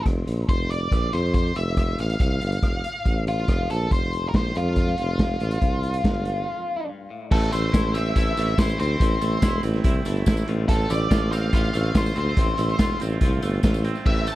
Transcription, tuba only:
0, 0, Header, 1, 2, 480
1, 0, Start_track
1, 0, Key_signature, -1, "major"
1, 0, Tempo, 427046
1, 555, Time_signature, 4, 2, 24, 8
1, 7273, Tempo, 421644
1, 16244, End_track
2, 0, Start_track
2, 0, Title_t, "Tuba"
2, 0, Program_c, 0, 58
2, 61, Note_on_c, 0, 29, 77
2, 291, Note_off_c, 0, 29, 0
2, 299, Note_on_c, 0, 34, 78
2, 530, Note_off_c, 0, 34, 0
2, 545, Note_on_c, 0, 29, 72
2, 997, Note_off_c, 0, 29, 0
2, 1027, Note_on_c, 0, 34, 71
2, 1255, Note_off_c, 0, 34, 0
2, 1273, Note_on_c, 0, 41, 86
2, 1723, Note_off_c, 0, 41, 0
2, 1751, Note_on_c, 0, 29, 82
2, 2202, Note_off_c, 0, 29, 0
2, 2233, Note_on_c, 0, 33, 84
2, 2460, Note_off_c, 0, 33, 0
2, 2472, Note_on_c, 0, 36, 85
2, 2699, Note_off_c, 0, 36, 0
2, 2721, Note_on_c, 0, 31, 90
2, 2942, Note_off_c, 0, 31, 0
2, 2949, Note_on_c, 0, 29, 66
2, 3178, Note_off_c, 0, 29, 0
2, 3434, Note_on_c, 0, 33, 76
2, 3884, Note_off_c, 0, 33, 0
2, 3915, Note_on_c, 0, 29, 81
2, 4141, Note_off_c, 0, 29, 0
2, 4167, Note_on_c, 0, 34, 97
2, 4388, Note_off_c, 0, 34, 0
2, 4395, Note_on_c, 0, 29, 74
2, 4844, Note_off_c, 0, 29, 0
2, 4874, Note_on_c, 0, 34, 76
2, 5100, Note_off_c, 0, 34, 0
2, 5121, Note_on_c, 0, 41, 91
2, 5567, Note_off_c, 0, 41, 0
2, 5603, Note_on_c, 0, 29, 84
2, 6048, Note_off_c, 0, 29, 0
2, 6077, Note_on_c, 0, 33, 94
2, 6301, Note_off_c, 0, 33, 0
2, 6315, Note_on_c, 0, 36, 79
2, 6762, Note_off_c, 0, 36, 0
2, 6794, Note_on_c, 0, 31, 75
2, 7239, Note_off_c, 0, 31, 0
2, 8232, Note_on_c, 0, 33, 86
2, 8469, Note_off_c, 0, 33, 0
2, 8474, Note_on_c, 0, 33, 96
2, 8705, Note_off_c, 0, 33, 0
2, 8712, Note_on_c, 0, 33, 93
2, 9181, Note_off_c, 0, 33, 0
2, 9194, Note_on_c, 0, 33, 82
2, 9430, Note_off_c, 0, 33, 0
2, 9435, Note_on_c, 0, 33, 88
2, 9666, Note_off_c, 0, 33, 0
2, 9673, Note_on_c, 0, 33, 91
2, 9910, Note_off_c, 0, 33, 0
2, 9925, Note_on_c, 0, 38, 100
2, 10145, Note_off_c, 0, 38, 0
2, 10152, Note_on_c, 0, 33, 97
2, 10389, Note_off_c, 0, 33, 0
2, 10400, Note_on_c, 0, 33, 96
2, 10628, Note_off_c, 0, 33, 0
2, 10634, Note_on_c, 0, 28, 90
2, 10863, Note_off_c, 0, 28, 0
2, 10870, Note_on_c, 0, 33, 97
2, 11107, Note_off_c, 0, 33, 0
2, 11116, Note_on_c, 0, 36, 84
2, 11346, Note_off_c, 0, 36, 0
2, 11353, Note_on_c, 0, 31, 92
2, 11586, Note_off_c, 0, 31, 0
2, 11593, Note_on_c, 0, 33, 96
2, 11821, Note_off_c, 0, 33, 0
2, 11828, Note_on_c, 0, 33, 86
2, 12066, Note_off_c, 0, 33, 0
2, 12071, Note_on_c, 0, 33, 84
2, 12307, Note_off_c, 0, 33, 0
2, 12314, Note_on_c, 0, 33, 103
2, 12549, Note_off_c, 0, 33, 0
2, 12555, Note_on_c, 0, 33, 86
2, 13021, Note_off_c, 0, 33, 0
2, 13035, Note_on_c, 0, 33, 80
2, 13268, Note_off_c, 0, 33, 0
2, 13280, Note_on_c, 0, 33, 97
2, 13500, Note_off_c, 0, 33, 0
2, 13507, Note_on_c, 0, 33, 93
2, 13744, Note_off_c, 0, 33, 0
2, 13751, Note_on_c, 0, 38, 88
2, 13979, Note_off_c, 0, 38, 0
2, 13985, Note_on_c, 0, 33, 82
2, 14223, Note_off_c, 0, 33, 0
2, 14232, Note_on_c, 0, 33, 99
2, 14462, Note_off_c, 0, 33, 0
2, 14469, Note_on_c, 0, 28, 74
2, 14704, Note_off_c, 0, 28, 0
2, 14714, Note_on_c, 0, 33, 94
2, 14939, Note_off_c, 0, 33, 0
2, 14945, Note_on_c, 0, 36, 89
2, 15183, Note_off_c, 0, 36, 0
2, 15191, Note_on_c, 0, 31, 91
2, 15421, Note_off_c, 0, 31, 0
2, 15428, Note_on_c, 0, 33, 100
2, 15769, Note_off_c, 0, 33, 0
2, 15909, Note_on_c, 0, 33, 85
2, 16144, Note_off_c, 0, 33, 0
2, 16244, End_track
0, 0, End_of_file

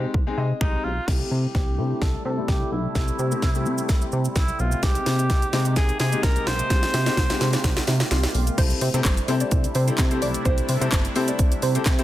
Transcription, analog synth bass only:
0, 0, Header, 1, 2, 480
1, 0, Start_track
1, 0, Key_signature, 0, "major"
1, 0, Tempo, 468750
1, 1107, Time_signature, 4, 2, 24, 8
1, 12325, End_track
2, 0, Start_track
2, 0, Title_t, "Analog synth bass"
2, 0, Program_c, 0, 38
2, 146, Note_on_c, 0, 36, 102
2, 303, Note_off_c, 0, 36, 0
2, 385, Note_on_c, 0, 48, 109
2, 541, Note_off_c, 0, 48, 0
2, 625, Note_on_c, 0, 36, 95
2, 781, Note_off_c, 0, 36, 0
2, 865, Note_on_c, 0, 35, 86
2, 1022, Note_off_c, 0, 35, 0
2, 1104, Note_on_c, 0, 36, 109
2, 1261, Note_off_c, 0, 36, 0
2, 1344, Note_on_c, 0, 48, 97
2, 1501, Note_off_c, 0, 48, 0
2, 1586, Note_on_c, 0, 36, 108
2, 1825, Note_on_c, 0, 48, 101
2, 1840, Note_off_c, 0, 36, 0
2, 1982, Note_off_c, 0, 48, 0
2, 2065, Note_on_c, 0, 36, 106
2, 2222, Note_off_c, 0, 36, 0
2, 2305, Note_on_c, 0, 48, 100
2, 2462, Note_off_c, 0, 48, 0
2, 2544, Note_on_c, 0, 36, 95
2, 2701, Note_off_c, 0, 36, 0
2, 2785, Note_on_c, 0, 35, 91
2, 2942, Note_off_c, 0, 35, 0
2, 3026, Note_on_c, 0, 36, 106
2, 3182, Note_off_c, 0, 36, 0
2, 3265, Note_on_c, 0, 48, 101
2, 3422, Note_off_c, 0, 48, 0
2, 3506, Note_on_c, 0, 36, 98
2, 3744, Note_on_c, 0, 48, 99
2, 3759, Note_off_c, 0, 36, 0
2, 3901, Note_off_c, 0, 48, 0
2, 3984, Note_on_c, 0, 36, 99
2, 4141, Note_off_c, 0, 36, 0
2, 4226, Note_on_c, 0, 48, 94
2, 4382, Note_off_c, 0, 48, 0
2, 4462, Note_on_c, 0, 36, 93
2, 4620, Note_off_c, 0, 36, 0
2, 4706, Note_on_c, 0, 35, 88
2, 4863, Note_off_c, 0, 35, 0
2, 4945, Note_on_c, 0, 36, 108
2, 5102, Note_off_c, 0, 36, 0
2, 5186, Note_on_c, 0, 48, 100
2, 5425, Note_on_c, 0, 36, 107
2, 5440, Note_off_c, 0, 48, 0
2, 5581, Note_off_c, 0, 36, 0
2, 5664, Note_on_c, 0, 48, 96
2, 5904, Note_on_c, 0, 36, 102
2, 5919, Note_off_c, 0, 48, 0
2, 6061, Note_off_c, 0, 36, 0
2, 6144, Note_on_c, 0, 48, 103
2, 6301, Note_off_c, 0, 48, 0
2, 6382, Note_on_c, 0, 36, 100
2, 6540, Note_off_c, 0, 36, 0
2, 6624, Note_on_c, 0, 35, 92
2, 6781, Note_off_c, 0, 35, 0
2, 6865, Note_on_c, 0, 36, 115
2, 7021, Note_off_c, 0, 36, 0
2, 7107, Note_on_c, 0, 48, 103
2, 7263, Note_off_c, 0, 48, 0
2, 7345, Note_on_c, 0, 36, 108
2, 7502, Note_off_c, 0, 36, 0
2, 7588, Note_on_c, 0, 48, 107
2, 7744, Note_off_c, 0, 48, 0
2, 7825, Note_on_c, 0, 36, 107
2, 7982, Note_off_c, 0, 36, 0
2, 8068, Note_on_c, 0, 48, 107
2, 8224, Note_off_c, 0, 48, 0
2, 8308, Note_on_c, 0, 36, 97
2, 8463, Note_off_c, 0, 36, 0
2, 8547, Note_on_c, 0, 35, 87
2, 8703, Note_off_c, 0, 35, 0
2, 8787, Note_on_c, 0, 36, 109
2, 8943, Note_off_c, 0, 36, 0
2, 9026, Note_on_c, 0, 48, 104
2, 9109, Note_off_c, 0, 48, 0
2, 9154, Note_on_c, 0, 48, 108
2, 9228, Note_off_c, 0, 48, 0
2, 9267, Note_on_c, 0, 31, 95
2, 9423, Note_off_c, 0, 31, 0
2, 9505, Note_on_c, 0, 48, 102
2, 9662, Note_off_c, 0, 48, 0
2, 9744, Note_on_c, 0, 36, 111
2, 9901, Note_off_c, 0, 36, 0
2, 9986, Note_on_c, 0, 48, 109
2, 10142, Note_off_c, 0, 48, 0
2, 10223, Note_on_c, 0, 48, 114
2, 10466, Note_on_c, 0, 35, 90
2, 10482, Note_off_c, 0, 48, 0
2, 10623, Note_off_c, 0, 35, 0
2, 10705, Note_on_c, 0, 36, 119
2, 10862, Note_off_c, 0, 36, 0
2, 10946, Note_on_c, 0, 48, 105
2, 11029, Note_off_c, 0, 48, 0
2, 11073, Note_on_c, 0, 48, 104
2, 11147, Note_off_c, 0, 48, 0
2, 11186, Note_on_c, 0, 31, 99
2, 11343, Note_off_c, 0, 31, 0
2, 11427, Note_on_c, 0, 48, 109
2, 11583, Note_off_c, 0, 48, 0
2, 11665, Note_on_c, 0, 36, 105
2, 11822, Note_off_c, 0, 36, 0
2, 11905, Note_on_c, 0, 48, 102
2, 12062, Note_off_c, 0, 48, 0
2, 12145, Note_on_c, 0, 48, 107
2, 12301, Note_off_c, 0, 48, 0
2, 12325, End_track
0, 0, End_of_file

